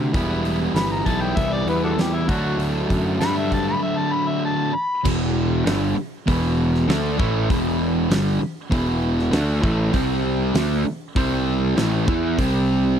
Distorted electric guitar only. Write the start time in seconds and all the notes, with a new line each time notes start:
Already playing: D3 A3 D4 F#4
0.13 E3 G3 B3 E4
1.06 E3 G3 B3 E4
2.28 D3 F#3 A3 D4
3.19 D3 F#3 A3
3.23 D4
5.04 E2 B2 E3
5.65 G2 D3 G3
5.97 muted distorted electric guitar stroke
6.26 E2 B2 E3
6.88 D3 A3 D4
7.18 A2 E3 A3
7.50 E2 B2 E3
8.10 G2 D3 G3
8.41 muted distorted electric guitar stroke
8.70 E2 B2 E3
9.31 D3 A3 D4
9.61 A2 E3 A3
9.92 C3 G3 C4
10.54 D3 A3 D4
10.85 muted distorted electric guitar stroke
11.16 C3 G3 C4
11.77 A2 E3 A3
12.07 E3 B3 E4
12.39 C3 G3 C4